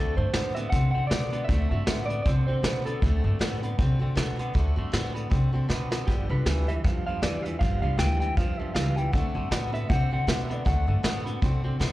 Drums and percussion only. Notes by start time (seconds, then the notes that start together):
0.34 snare, closed hi-hat
0.56 closed hi-hat
0.72 kick, closed hi-hat
1.11 snare, closed hi-hat
1.33 closed hi-hat
1.49 kick, closed hi-hat
1.87 snare, closed hi-hat
2.10 closed hi-hat
2.26 kick, closed hi-hat
2.64 snare, closed hi-hat
2.86 closed hi-hat
3.02 kick, closed hi-hat
3.41 snare, closed hi-hat
3.63 closed hi-hat
3.79 kick, closed hi-hat
4.17 snare, closed hi-hat
4.39 closed hi-hat
4.55 kick, closed hi-hat
4.93 snare, closed hi-hat
5.16 closed hi-hat
5.32 kick, closed hi-hat
5.70 snare
5.92 snare
6.07 kick, closed hi-hat
6.46 snare, closed hi-hat
6.68 closed hi-hat
6.84 kick, closed hi-hat
7.23 snare, closed hi-hat
7.45 closed hi-hat
7.61 kick, closed hi-hat
7.99 snare, closed hi-hat
8.22 closed hi-hat
8.37 kick, closed hi-hat
8.76 snare, closed hi-hat
8.98 closed hi-hat
9.13 kick, closed hi-hat
9.52 snare, closed hi-hat
9.75 closed hi-hat
9.90 kick, closed hi-hat
10.28 snare, closed hi-hat
10.51 closed hi-hat
10.66 kick, closed hi-hat
11.04 snare, closed hi-hat
11.27 closed hi-hat
11.42 kick, closed hi-hat
11.81 snare